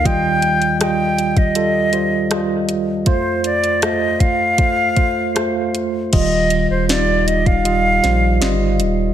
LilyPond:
<<
  \new Staff \with { instrumentName = "Flute" } { \time 4/4 \key ees \lydian \tempo 4 = 79 g''4 g''8. ees''4.~ ees''16 r8 | c''8 d''8 ees''8 f''2 r8 | ees''8. c''16 d''8 ees''16 f''4.~ f''16 r8 | }
  \new Staff \with { instrumentName = "Tine electric piano" } { \time 4/4 \key ees \lydian <g f' ees''>4 <g f' ees''>4 <g f' a'>8 <g f' c''>8 <g f' ees''>4 | <a f' c''>4 <a f' c''>4 <a f' c''>8 <a f' c''>8 <a f' c''>4 | <g f' ees''>4 <g ees' f'>4 <g f' ees''>8 <g f' c''>8 <g f' ees''>4 | }
  \new Staff \with { instrumentName = "Tine electric piano" } { \clef bass \time 4/4 \key ees \lydian <ees, ees>1 | f,1 | ees4. r2 r8 | }
  \new Staff \with { instrumentName = "Sub bass" } { \clef bass \time 4/4 \key ees \lydian r1 | r1 | ees,,8. ees,,4.~ ees,,16 bes,,8 g,,8 ees,,8 | }
  \new DrumStaff \with { instrumentName = "Drums" } \drummode { \time 4/4 <hh bd>8 hh16 hh16 <hh ss>8 hh16 <hh bd>16 hh8 hh8 <hh ss>8 hh8 | <hh bd>8 hh16 hh16 <hh ss>8 <hh bd>8 <hh bd>8 <hh bd>8 <hh ss>8 hh8 | <cymc hh bd>8 hh8 <hh sn>8 hh16 <hh bd>16 hh8 <hh sn>8 <hh sn>8 hh8 | }
>>